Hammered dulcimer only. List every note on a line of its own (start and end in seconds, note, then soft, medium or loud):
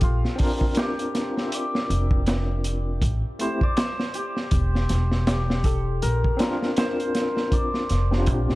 0.00 1.54 F4 medium
0.00 0.78 G4 medium
0.79 3.92 G4 medium
1.48 3.78 E5 medium
1.54 3.63 D5 medium
3.41 3.78 C5 loud
3.63 6.09 D5 loud
3.78 6.42 C5 loud
4.15 5.27 G4 medium
5.28 8.42 G4 medium
5.65 5.75 A4 medium
6.02 8.55 A#4 loud
6.77 8.55 C5 medium
7.53 8.55 D5 medium